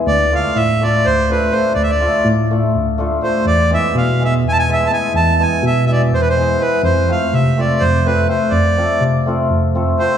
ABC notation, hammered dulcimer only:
X:1
M:7/8
L:1/8
Q:1/4=124
K:none
V:1 name="Hammered dulcimer"
z [A,DFA] z [A,DFA] z [A,DFA] [A,DFA] | z [A,DFA] z [A,DFA] z [A,DFA] [A,DFA] | z [^G,B,E^G] z [G,B,EG] z [G,B,EG] [G,B,EG] | z [^G,B,E^G] z [G,B,EG] z [G,B,EG] [G,B,EG] |
z [A,CFA] z [A,CFA] z [A,CFA] [A,CFA] | z [A,CFA] z [A,CFA] z [A,CFA] [A,CFA] |]